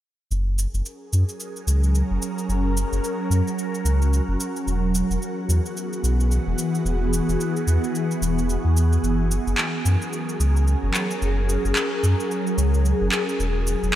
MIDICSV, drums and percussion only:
0, 0, Header, 1, 2, 480
1, 0, Start_track
1, 0, Tempo, 545455
1, 267, Time_signature, 4, 2, 24, 8
1, 12279, End_track
2, 0, Start_track
2, 0, Title_t, "Drums"
2, 276, Note_on_c, 9, 82, 40
2, 364, Note_off_c, 9, 82, 0
2, 515, Note_on_c, 9, 82, 65
2, 603, Note_off_c, 9, 82, 0
2, 656, Note_on_c, 9, 82, 30
2, 744, Note_off_c, 9, 82, 0
2, 754, Note_on_c, 9, 82, 38
2, 842, Note_off_c, 9, 82, 0
2, 994, Note_on_c, 9, 82, 69
2, 1082, Note_off_c, 9, 82, 0
2, 1134, Note_on_c, 9, 82, 29
2, 1222, Note_off_c, 9, 82, 0
2, 1233, Note_on_c, 9, 82, 40
2, 1321, Note_off_c, 9, 82, 0
2, 1377, Note_on_c, 9, 82, 26
2, 1465, Note_off_c, 9, 82, 0
2, 1476, Note_on_c, 9, 82, 72
2, 1564, Note_off_c, 9, 82, 0
2, 1616, Note_on_c, 9, 82, 30
2, 1704, Note_off_c, 9, 82, 0
2, 1716, Note_on_c, 9, 82, 40
2, 1804, Note_off_c, 9, 82, 0
2, 1956, Note_on_c, 9, 82, 68
2, 2044, Note_off_c, 9, 82, 0
2, 2099, Note_on_c, 9, 82, 29
2, 2187, Note_off_c, 9, 82, 0
2, 2197, Note_on_c, 9, 82, 41
2, 2285, Note_off_c, 9, 82, 0
2, 2439, Note_on_c, 9, 82, 71
2, 2527, Note_off_c, 9, 82, 0
2, 2578, Note_on_c, 9, 82, 31
2, 2666, Note_off_c, 9, 82, 0
2, 2677, Note_on_c, 9, 82, 39
2, 2765, Note_off_c, 9, 82, 0
2, 2918, Note_on_c, 9, 82, 70
2, 3006, Note_off_c, 9, 82, 0
2, 3059, Note_on_c, 9, 82, 32
2, 3147, Note_off_c, 9, 82, 0
2, 3156, Note_on_c, 9, 82, 42
2, 3244, Note_off_c, 9, 82, 0
2, 3298, Note_on_c, 9, 82, 26
2, 3386, Note_off_c, 9, 82, 0
2, 3395, Note_on_c, 9, 82, 73
2, 3483, Note_off_c, 9, 82, 0
2, 3538, Note_on_c, 9, 82, 30
2, 3626, Note_off_c, 9, 82, 0
2, 3637, Note_on_c, 9, 82, 40
2, 3725, Note_off_c, 9, 82, 0
2, 3875, Note_on_c, 9, 82, 70
2, 3963, Note_off_c, 9, 82, 0
2, 4016, Note_on_c, 9, 82, 33
2, 4104, Note_off_c, 9, 82, 0
2, 4117, Note_on_c, 9, 82, 41
2, 4205, Note_off_c, 9, 82, 0
2, 4354, Note_on_c, 9, 82, 74
2, 4442, Note_off_c, 9, 82, 0
2, 4497, Note_on_c, 9, 82, 32
2, 4585, Note_off_c, 9, 82, 0
2, 4597, Note_on_c, 9, 82, 40
2, 4685, Note_off_c, 9, 82, 0
2, 4837, Note_on_c, 9, 82, 73
2, 4925, Note_off_c, 9, 82, 0
2, 4979, Note_on_c, 9, 82, 32
2, 5067, Note_off_c, 9, 82, 0
2, 5078, Note_on_c, 9, 82, 42
2, 5166, Note_off_c, 9, 82, 0
2, 5219, Note_on_c, 9, 82, 27
2, 5307, Note_off_c, 9, 82, 0
2, 5318, Note_on_c, 9, 82, 70
2, 5406, Note_off_c, 9, 82, 0
2, 5460, Note_on_c, 9, 82, 32
2, 5548, Note_off_c, 9, 82, 0
2, 5557, Note_on_c, 9, 82, 40
2, 5645, Note_off_c, 9, 82, 0
2, 5794, Note_on_c, 9, 82, 72
2, 5882, Note_off_c, 9, 82, 0
2, 5938, Note_on_c, 9, 82, 33
2, 6026, Note_off_c, 9, 82, 0
2, 6038, Note_on_c, 9, 82, 40
2, 6126, Note_off_c, 9, 82, 0
2, 6277, Note_on_c, 9, 82, 74
2, 6365, Note_off_c, 9, 82, 0
2, 6418, Note_on_c, 9, 82, 33
2, 6506, Note_off_c, 9, 82, 0
2, 6518, Note_on_c, 9, 82, 42
2, 6606, Note_off_c, 9, 82, 0
2, 6657, Note_on_c, 9, 82, 29
2, 6745, Note_off_c, 9, 82, 0
2, 6756, Note_on_c, 9, 82, 68
2, 6844, Note_off_c, 9, 82, 0
2, 6899, Note_on_c, 9, 82, 30
2, 6987, Note_off_c, 9, 82, 0
2, 6998, Note_on_c, 9, 82, 43
2, 7086, Note_off_c, 9, 82, 0
2, 7138, Note_on_c, 9, 82, 28
2, 7226, Note_off_c, 9, 82, 0
2, 7238, Note_on_c, 9, 82, 76
2, 7326, Note_off_c, 9, 82, 0
2, 7380, Note_on_c, 9, 82, 30
2, 7468, Note_off_c, 9, 82, 0
2, 7476, Note_on_c, 9, 82, 42
2, 7564, Note_off_c, 9, 82, 0
2, 7716, Note_on_c, 9, 82, 67
2, 7804, Note_off_c, 9, 82, 0
2, 7856, Note_on_c, 9, 82, 32
2, 7944, Note_off_c, 9, 82, 0
2, 7957, Note_on_c, 9, 82, 38
2, 8045, Note_off_c, 9, 82, 0
2, 8196, Note_on_c, 9, 82, 76
2, 8284, Note_off_c, 9, 82, 0
2, 8338, Note_on_c, 9, 82, 30
2, 8426, Note_off_c, 9, 82, 0
2, 8428, Note_on_c, 9, 39, 63
2, 8436, Note_on_c, 9, 82, 38
2, 8516, Note_off_c, 9, 39, 0
2, 8524, Note_off_c, 9, 82, 0
2, 8675, Note_on_c, 9, 82, 68
2, 8763, Note_off_c, 9, 82, 0
2, 8817, Note_on_c, 9, 82, 32
2, 8905, Note_off_c, 9, 82, 0
2, 8914, Note_on_c, 9, 82, 40
2, 9002, Note_off_c, 9, 82, 0
2, 9057, Note_on_c, 9, 82, 27
2, 9145, Note_off_c, 9, 82, 0
2, 9156, Note_on_c, 9, 82, 72
2, 9244, Note_off_c, 9, 82, 0
2, 9298, Note_on_c, 9, 82, 30
2, 9386, Note_off_c, 9, 82, 0
2, 9395, Note_on_c, 9, 82, 38
2, 9483, Note_off_c, 9, 82, 0
2, 9627, Note_on_c, 9, 39, 62
2, 9635, Note_on_c, 9, 82, 70
2, 9715, Note_off_c, 9, 39, 0
2, 9723, Note_off_c, 9, 82, 0
2, 9775, Note_on_c, 9, 82, 31
2, 9863, Note_off_c, 9, 82, 0
2, 9875, Note_on_c, 9, 82, 39
2, 9963, Note_off_c, 9, 82, 0
2, 10114, Note_on_c, 9, 82, 68
2, 10202, Note_off_c, 9, 82, 0
2, 10255, Note_on_c, 9, 82, 30
2, 10343, Note_off_c, 9, 82, 0
2, 10345, Note_on_c, 9, 39, 66
2, 10353, Note_on_c, 9, 82, 40
2, 10433, Note_off_c, 9, 39, 0
2, 10441, Note_off_c, 9, 82, 0
2, 10594, Note_on_c, 9, 82, 69
2, 10682, Note_off_c, 9, 82, 0
2, 10737, Note_on_c, 9, 82, 32
2, 10825, Note_off_c, 9, 82, 0
2, 10836, Note_on_c, 9, 82, 37
2, 10924, Note_off_c, 9, 82, 0
2, 10973, Note_on_c, 9, 82, 28
2, 11061, Note_off_c, 9, 82, 0
2, 11073, Note_on_c, 9, 82, 67
2, 11161, Note_off_c, 9, 82, 0
2, 11213, Note_on_c, 9, 82, 28
2, 11301, Note_off_c, 9, 82, 0
2, 11313, Note_on_c, 9, 82, 38
2, 11401, Note_off_c, 9, 82, 0
2, 11545, Note_on_c, 9, 39, 65
2, 11553, Note_on_c, 9, 82, 65
2, 11633, Note_off_c, 9, 39, 0
2, 11641, Note_off_c, 9, 82, 0
2, 11695, Note_on_c, 9, 82, 30
2, 11783, Note_off_c, 9, 82, 0
2, 11793, Note_on_c, 9, 82, 40
2, 11881, Note_off_c, 9, 82, 0
2, 12030, Note_on_c, 9, 82, 69
2, 12118, Note_off_c, 9, 82, 0
2, 12176, Note_on_c, 9, 82, 30
2, 12264, Note_off_c, 9, 82, 0
2, 12279, End_track
0, 0, End_of_file